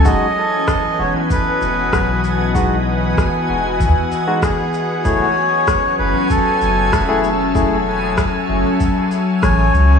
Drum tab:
SH |x-x-xxxx|x-x-xxxx|x-x-xxxx|x-x-xxxx|
SD |--r---r-|--r---r-|--r---r-|--r---r-|
BD |o-o-o-o-|o-o-o-o-|o-o-o-o-|o-o-o-o-|